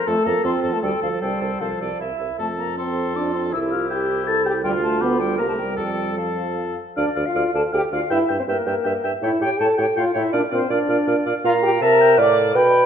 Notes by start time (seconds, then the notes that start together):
0.07 F2 A3 A4 A5
0.26 F2 A#3 A4 A#5
0.44 F2 C4 F4 A4 C6
0.62 F2 A4
0.74 A3 A5
0.82 D2 G3 A4 G5
1.02 D2 F3 A4 F5
1.21 C2 G3 A4 C5 G5
1.41 C2 A4
1.60 C2 F3 A4 C5 F5
1.81 C2 A4 D5
2.00 C2 E4 E5
2.19 C2 E4
2.39 F2 A3 A4 A5
2.58 A#3 A#5
2.77 C4 A4 C6
3.15 D4 F4 D6
3.34 C4 C6
3.53 C2 E4 G4 E6
3.71 F4 F6
3.90 E4 G4 G6
4.27 E4 A4 A6
4.45 G4 G6
4.64 D2 G3 F4 G5
4.82 A3 A5
5.01 D2 B3 G4 B5
5.19 G3 G4 G5
5.38 C2 A#3 G4 A#4 A#5
5.48 A3 A5
5.58 G3 G5
5.77 F2 G3 A4 G5
6.18 F3 A4 F5
6.97 D2 D4 D5 F5
7.16 D2 D5 F5
7.26 F4 F5
7.35 D2 D5 F5
7.54 D2 A4 D5 F5 A5
7.72 D2 G4 D5 F5 G5
7.92 D2 F4 D5 F5
8.10 G2 E4 E5 G5
8.29 G2 E5 G5
8.39 C4 C5
8.48 G2 A#3 A#4 E5 G5
8.66 G2 E5 G5
8.84 G2 E5 G5
9.03 G2 E5 G5
9.22 A2 E4 C#5 E5 G5
9.41 A2 G4 C#5 G5
9.60 A2 A4 C#5 G5 A5
9.78 A2 G4 C#5 G5
9.97 A2 F4 C#5 F5 G5
10.14 A2 E4 C#5 E5 G5
10.33 A#2 D4 D5 F5
10.51 A#2 C4 C5 D5 F5
10.70 A#2 D4 D5 F5
10.88 A#2 D5 F5
11.07 A#2 D5 F5
11.25 A#2 D5 F5
11.44 A#2 F4 F5 A#5
11.63 G4 G5
11.81 C3 A#4 E5 A5 A#5
12.00 G5
12.18 A2 D5 F5 D6
12.55 B2 B4 G5 B5